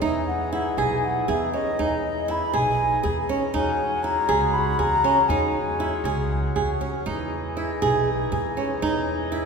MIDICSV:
0, 0, Header, 1, 5, 480
1, 0, Start_track
1, 0, Tempo, 503356
1, 13, Time_signature, 7, 3, 24, 8
1, 9015, End_track
2, 0, Start_track
2, 0, Title_t, "Flute"
2, 0, Program_c, 0, 73
2, 17, Note_on_c, 0, 76, 64
2, 242, Note_off_c, 0, 76, 0
2, 254, Note_on_c, 0, 78, 72
2, 481, Note_off_c, 0, 78, 0
2, 505, Note_on_c, 0, 78, 68
2, 742, Note_on_c, 0, 80, 78
2, 756, Note_off_c, 0, 78, 0
2, 997, Note_on_c, 0, 78, 74
2, 1011, Note_off_c, 0, 80, 0
2, 1234, Note_on_c, 0, 76, 77
2, 1249, Note_off_c, 0, 78, 0
2, 1455, Note_off_c, 0, 76, 0
2, 1461, Note_on_c, 0, 75, 90
2, 1906, Note_off_c, 0, 75, 0
2, 1946, Note_on_c, 0, 75, 80
2, 2198, Note_on_c, 0, 83, 91
2, 2213, Note_off_c, 0, 75, 0
2, 2434, Note_on_c, 0, 80, 92
2, 2448, Note_off_c, 0, 83, 0
2, 2903, Note_off_c, 0, 80, 0
2, 3379, Note_on_c, 0, 80, 78
2, 3845, Note_on_c, 0, 82, 93
2, 3860, Note_off_c, 0, 80, 0
2, 4320, Note_on_c, 0, 83, 90
2, 4334, Note_off_c, 0, 82, 0
2, 4571, Note_on_c, 0, 82, 99
2, 4585, Note_off_c, 0, 83, 0
2, 5037, Note_on_c, 0, 80, 74
2, 5052, Note_off_c, 0, 82, 0
2, 6003, Note_off_c, 0, 80, 0
2, 9015, End_track
3, 0, Start_track
3, 0, Title_t, "Nylon-string guitar"
3, 0, Program_c, 1, 24
3, 15, Note_on_c, 1, 63, 82
3, 271, Note_off_c, 1, 63, 0
3, 501, Note_on_c, 1, 64, 67
3, 628, Note_off_c, 1, 64, 0
3, 744, Note_on_c, 1, 68, 78
3, 997, Note_off_c, 1, 68, 0
3, 1222, Note_on_c, 1, 68, 68
3, 1349, Note_off_c, 1, 68, 0
3, 1464, Note_on_c, 1, 61, 60
3, 1590, Note_off_c, 1, 61, 0
3, 1708, Note_on_c, 1, 63, 79
3, 1958, Note_off_c, 1, 63, 0
3, 2177, Note_on_c, 1, 64, 65
3, 2304, Note_off_c, 1, 64, 0
3, 2417, Note_on_c, 1, 68, 76
3, 2669, Note_off_c, 1, 68, 0
3, 2893, Note_on_c, 1, 68, 70
3, 3019, Note_off_c, 1, 68, 0
3, 3140, Note_on_c, 1, 61, 75
3, 3264, Note_off_c, 1, 61, 0
3, 3373, Note_on_c, 1, 63, 85
3, 3624, Note_off_c, 1, 63, 0
3, 3853, Note_on_c, 1, 64, 68
3, 3977, Note_off_c, 1, 64, 0
3, 4088, Note_on_c, 1, 68, 83
3, 4339, Note_off_c, 1, 68, 0
3, 4567, Note_on_c, 1, 68, 68
3, 4692, Note_off_c, 1, 68, 0
3, 4809, Note_on_c, 1, 61, 74
3, 4934, Note_off_c, 1, 61, 0
3, 5053, Note_on_c, 1, 63, 79
3, 5304, Note_off_c, 1, 63, 0
3, 5529, Note_on_c, 1, 64, 71
3, 5655, Note_off_c, 1, 64, 0
3, 5772, Note_on_c, 1, 68, 77
3, 6025, Note_off_c, 1, 68, 0
3, 6254, Note_on_c, 1, 68, 64
3, 6380, Note_off_c, 1, 68, 0
3, 6493, Note_on_c, 1, 61, 61
3, 6620, Note_off_c, 1, 61, 0
3, 6731, Note_on_c, 1, 63, 80
3, 6987, Note_off_c, 1, 63, 0
3, 7217, Note_on_c, 1, 64, 71
3, 7343, Note_off_c, 1, 64, 0
3, 7457, Note_on_c, 1, 68, 82
3, 7709, Note_off_c, 1, 68, 0
3, 7933, Note_on_c, 1, 68, 69
3, 8060, Note_off_c, 1, 68, 0
3, 8172, Note_on_c, 1, 61, 67
3, 8299, Note_off_c, 1, 61, 0
3, 8414, Note_on_c, 1, 63, 90
3, 8666, Note_off_c, 1, 63, 0
3, 8886, Note_on_c, 1, 64, 68
3, 9014, Note_off_c, 1, 64, 0
3, 9015, End_track
4, 0, Start_track
4, 0, Title_t, "Harmonium"
4, 0, Program_c, 2, 20
4, 21, Note_on_c, 2, 52, 67
4, 22, Note_on_c, 2, 63, 63
4, 26, Note_on_c, 2, 68, 71
4, 1689, Note_off_c, 2, 63, 0
4, 1710, Note_on_c, 2, 63, 64
4, 3341, Note_off_c, 2, 52, 0
4, 3344, Note_off_c, 2, 68, 0
4, 3358, Note_off_c, 2, 63, 0
4, 3381, Note_on_c, 2, 56, 82
4, 3382, Note_on_c, 2, 66, 79
4, 3383, Note_on_c, 2, 61, 65
4, 6704, Note_off_c, 2, 56, 0
4, 6705, Note_off_c, 2, 61, 0
4, 6705, Note_off_c, 2, 66, 0
4, 6735, Note_on_c, 2, 68, 67
4, 6736, Note_on_c, 2, 52, 72
4, 6740, Note_on_c, 2, 63, 58
4, 9015, Note_off_c, 2, 52, 0
4, 9015, Note_off_c, 2, 63, 0
4, 9015, Note_off_c, 2, 68, 0
4, 9015, End_track
5, 0, Start_track
5, 0, Title_t, "Upright bass"
5, 0, Program_c, 3, 32
5, 20, Note_on_c, 3, 40, 79
5, 639, Note_off_c, 3, 40, 0
5, 738, Note_on_c, 3, 35, 86
5, 1151, Note_off_c, 3, 35, 0
5, 1227, Note_on_c, 3, 40, 90
5, 1430, Note_off_c, 3, 40, 0
5, 1713, Note_on_c, 3, 40, 83
5, 2320, Note_off_c, 3, 40, 0
5, 2425, Note_on_c, 3, 35, 86
5, 2830, Note_off_c, 3, 35, 0
5, 2907, Note_on_c, 3, 40, 86
5, 3105, Note_off_c, 3, 40, 0
5, 3380, Note_on_c, 3, 40, 84
5, 3987, Note_off_c, 3, 40, 0
5, 4093, Note_on_c, 3, 37, 87
5, 4498, Note_off_c, 3, 37, 0
5, 4570, Note_on_c, 3, 40, 83
5, 4771, Note_off_c, 3, 40, 0
5, 5043, Note_on_c, 3, 40, 92
5, 5659, Note_off_c, 3, 40, 0
5, 5759, Note_on_c, 3, 37, 92
5, 6174, Note_off_c, 3, 37, 0
5, 6254, Note_on_c, 3, 40, 75
5, 6459, Note_off_c, 3, 40, 0
5, 6740, Note_on_c, 3, 40, 82
5, 7355, Note_off_c, 3, 40, 0
5, 7457, Note_on_c, 3, 35, 91
5, 7866, Note_off_c, 3, 35, 0
5, 7932, Note_on_c, 3, 40, 87
5, 8138, Note_off_c, 3, 40, 0
5, 8413, Note_on_c, 3, 40, 83
5, 9015, Note_off_c, 3, 40, 0
5, 9015, End_track
0, 0, End_of_file